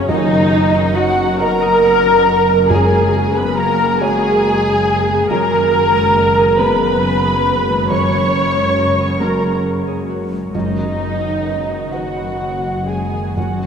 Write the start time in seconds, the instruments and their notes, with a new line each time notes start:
Already playing: harp C#3 A#3 G#4 A#4 C#5 G#5 A#5 C#6, felt piano A#3 G#4 C#5
0.08 double bass section F#1, timpani F#2, felt piano F#2, cello section F#2, harp F#2, french horn section D#3, viola section D#4, violin section D#4 D#5, flute D#5
0.31 harp F#3
0.53 harp B3
0.75 harp F#4
0.95 french horn section F#3, viola section F#4, violin section F#4 F#5, harp D#5, flute F#5
1.38 felt piano B3 F#4 D#5, viola section A#4, violin section A#4 A#5, french horn section A#4, harp F#5, flute A#5
1.62 harp D#6
1.83 harp F#5
2.27 harp F#4
2.48 harp B3
2.70 harp F#2, timpani F#2, felt piano F#2, french horn section G#3, viola section G#4, violin section G#4 G#5, flute G#5
2.92 harp C#3
3.13 harp C#4
3.35 french horn section B3, harp G#4, viola section B4, violin section B4 B5, flute B5
3.56 french horn section A#3, viola section A#4, violin section A#4 A#5, harp C#5, flute A#5
3.99 french horn section G#3, felt piano A#3 F#4 C#5, viola section G#4, violin section G#4 G#5, flute G#5, harp G#5
4.22 harp C#6
4.44 harp G#5
4.87 harp G#4
5.09 harp B3
5.29 double bass section F#1, cello section F#2, harp F#2, felt piano F#2, viola section A#4, french horn section A#4, violin section A#4 A#5, flute A#5
5.52 harp D#3
5.73 harp G#3
5.95 harp G#4
6.16 harp D#5
6.38 harp G#4
6.59 felt piano G#3 G#4 B4, french horn section B3, viola section B4, violin section B4 B5, harp G#5, flute B5
6.82 harp B5
7.03 harp G#5
7.25 harp G#4
7.47 harp G#3
7.69 harp D#3
7.90 harp F#2, felt piano F#2, french horn section C#4, viola section C#5, violin section C#5 C#6, flute C#6
8.12 harp C#3
8.35 harp G#3
8.56 harp F#4
8.78 harp A#4
9.00 harp G#4
9.20 felt piano G#3 F#4 A#4, violin section A#4 A#5, viola section A#4, french horn section A#4, harp C#5, flute A#5
9.43 harp A#5
9.87 harp G#4
10.10 harp F#4
10.32 harp G#3
10.54 double bass section F#1, harp F#2, timpani F#2, cello section F#2, felt piano F#2, french horn section D#3, viola section D#4, violin section D#4 D#5, flute D#5
10.77 harp D#3
11.00 harp F#3
11.23 harp F#4
11.46 harp B4
11.69 harp F#4
11.92 french horn section F#3, felt piano F#3 F#4 B4, violin section F#4 F#5, viola section F#4, harp D#5, flute F#5
12.16 harp B5
12.64 harp F#4
12.87 harp F#3, french horn section G#3, viola section G#4, violin section G#4 G#5, flute G#5
13.13 harp D#3
13.36 timpani F#2, harp F#2, felt piano F#2, french horn section F#3, viola section F#4, violin section F#4 F#5, flute F#5
13.62 harp C#3